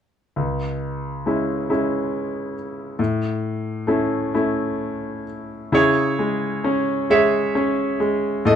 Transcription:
0.36 2.95 C#2 soft
1.26 1.68 G#3 soft
1.26 1.69 C#4 soft
1.26 1.68 E4 soft
1.70 2.53 G#3 soft
1.70 2.54 C#4 soft
1.70 2.53 E4 soft
2.99 5.67 A2 soft
3.87 4.33 A3 soft
3.87 4.33 C#4 soft
3.87 4.33 E4 soft
4.34 5.23 A3 soft
4.34 5.23 C#4 soft
4.34 5.23 E4 soft
5.72 8.41 C#3 soft
5.72 7.06 E4 soft
5.72 7.06 G#4 soft
5.72 7.09 C#5 medium
6.19 7.09 G#3 soft
6.64 7.54 C#4 soft
7.10 7.98 G#3 soft
7.10 8.42 G#4 soft
7.10 8.42 C#5 soft
7.10 8.50 E5 medium
7.55 8.43 C#4 soft
8.00 8.44 G#3 soft
8.45 8.56 A2 medium
8.45 8.56 A4 medium
8.45 8.56 D#5 medium

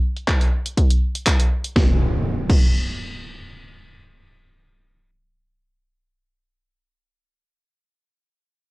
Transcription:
0.17 closed hi-hat soft
0.28 kick medium
0.28 clap loud
0.28 closed hi-hat medium
0.41 closed hi-hat soft
0.66 closed hi-hat soft
0.78 kick loud
0.78 closed hi-hat medium
0.91 closed hi-hat medium
1.15 closed hi-hat soft
1.27 kick medium
1.27 clap loud
1.27 closed hi-hat medium
1.40 closed hi-hat soft
1.64 closed hi-hat soft
1.76 kick loud
1.76 snare medium
1.76 impact medium
2.50 kick loud
2.50 crash medium

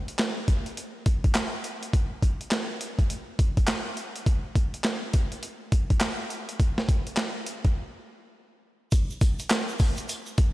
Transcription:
0.08 closed hi-hat soft
0.19 snare loud
0.19 clap medium
0.19 closed hi-hat medium
0.48 kick medium
0.48 closed hi-hat medium
0.66 closed hi-hat soft
0.77 closed hi-hat medium
1.06 kick medium
1.06 closed hi-hat medium
1.24 kick medium
1.24 closed hi-hat soft
1.35 snare loud
1.35 clap medium
1.35 closed hi-hat medium
1.64 closed hi-hat medium
1.83 closed hi-hat medium
1.93 kick loud
1.93 closed hi-hat medium
2.23 kick medium
2.23 closed hi-hat medium
2.41 closed hi-hat soft
2.51 snare loud
2.51 clap medium
2.51 closed hi-hat medium
2.81 closed hi-hat medium
2.99 kick medium
2.99 closed hi-hat soft
3.10 closed hi-hat medium
3.39 kick loud
3.39 closed hi-hat medium
3.57 kick medium
3.57 closed hi-hat soft
3.67 snare loud
3.67 clap medium
3.67 closed hi-hat medium
3.97 closed hi-hat medium
4.16 closed hi-hat medium
4.26 kick loud
4.26 closed hi-hat medium
4.55 kick medium
4.55 closed hi-hat medium
4.74 closed hi-hat soft
4.84 snare medium
4.84 clap medium
4.84 closed hi-hat medium
5.13 kick medium
5.13 closed hi-hat medium
5.32 closed hi-hat soft
5.43 closed hi-hat medium
5.72 kick medium
5.72 closed hi-hat medium
5.90 kick medium
5.90 closed hi-hat soft
6.01 snare loud
6.01 clap medium
6.01 closed hi-hat medium
6.30 closed hi-hat medium
6.49 closed hi-hat medium
6.60 kick loud
6.60 closed hi-hat medium
6.78 snare medium
6.89 kick medium
6.89 closed hi-hat medium
7.07 closed hi-hat soft
7.17 snare loud
7.17 clap medium
7.17 closed hi-hat medium
7.46 closed hi-hat medium
7.65 kick medium
7.65 closed hi-hat soft
8.92 kick loud
8.92 closed hi-hat medium
8.92 tambourine medium
8.92 shaker medium
9.10 shaker soft
9.21 kick medium
9.21 closed hi-hat medium
9.21 tambourine medium
9.21 shaker soft
9.39 closed hi-hat soft
9.39 shaker medium
9.50 snare loud
9.50 clap medium
9.50 closed hi-hat medium
9.50 tambourine medium
9.50 shaker medium
9.69 shaker medium
9.79 kick medium
9.79 open hi-hat medium
9.79 tambourine medium
9.79 shaker medium
9.97 closed hi-hat soft
9.97 shaker soft
10.08 closed hi-hat medium
10.08 tambourine medium
10.08 shaker medium
10.26 shaker medium
10.38 kick loud
10.38 closed hi-hat medium

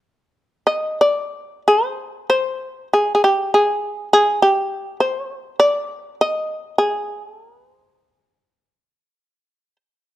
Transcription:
0.67 0.98 D#5 medium
1.01 1.62 D5 medium
1.68 2.26 C5 medium
2.30 2.87 C5 medium
2.93 3.14 G#4 medium
3.15 3.21 G#4 medium
3.24 3.50 G4 medium
3.54 4.08 G#4 medium
4.13 4.39 G#4 medium
4.42 4.96 G4 medium
5.00 5.55 C5 medium
5.60 6.14 D5 medium
6.21 6.75 D#5 medium
6.78 7.23 G#4 medium
7.23 7.40 A4 medium
7.40 7.57 A#4 medium
7.57 7.74 B4 medium
7.74 9.76 C5 medium

